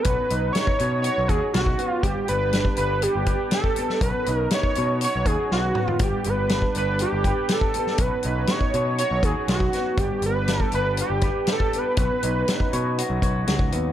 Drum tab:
HH |x-x-x-x-x-x-x-x-|x-x-x-x-x-x-x-x-|x-x-x-x-x-x-----|x-x-x-x-x-x-x-x-|
SD |----o-------o---|----o-------o--o|----o-------o---|----o-------o--o|
T2 |----------------|----------------|--------------o-|----------------|
FT |----------------|----------------|---------------o|----------------|
BD |o----o----o--o--|o----o----o--o--|o----o----o-----|o----o----o--o--|

HH |x-x-x-x-x-x-x-x-|x-x-x-x-x-x-x-x-|x-x-x-x-x-x-x-x-|
SD |----o-------o-o-|----o-------o---|----o-------o---|
T2 |----------------|----------------|----------------|
FT |----------------|----------------|----------------|
BD |o----o----o--o--|o----o----o--o--|o----o----o--o--|